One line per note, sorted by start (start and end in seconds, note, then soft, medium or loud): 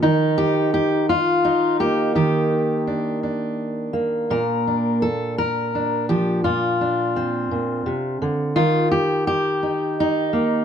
0.03 2.14 D#3 medium
0.03 1.09 D#4 medium
0.38 0.73 G4 medium
0.74 1.09 G4 medium
1.09 1.80 F4 medium
1.45 2.51 D#4 medium
1.80 3.93 A#3 soft
1.80 2.14 G4 medium
2.15 4.30 D#3 medium
2.15 4.30 G4 medium
2.87 3.23 D4 soft
3.23 4.67 D4 soft
3.93 5.05 A#3 soft
4.30 6.44 A#2 medium
4.30 5.02 A#4 medium
4.67 5.75 D4 soft
5.02 5.38 A4 medium
5.38 6.09 A#4 medium
5.75 6.81 D4 soft
6.09 6.40 F3 soft
6.09 6.44 G4 medium
6.44 7.50 A#2 medium
6.44 8.55 F4 medium
6.81 8.59 D4 soft
7.16 8.53 C4 soft
7.51 7.86 A#2 soft
7.86 8.21 C3 medium
8.22 8.56 D3 medium
8.56 10.65 D#3 medium
8.56 8.91 F4 medium
8.92 9.26 G4 medium
9.27 10.65 G4 medium
9.63 9.98 D#4 soft
10.00 10.65 D#4 medium
10.33 10.65 A#3 medium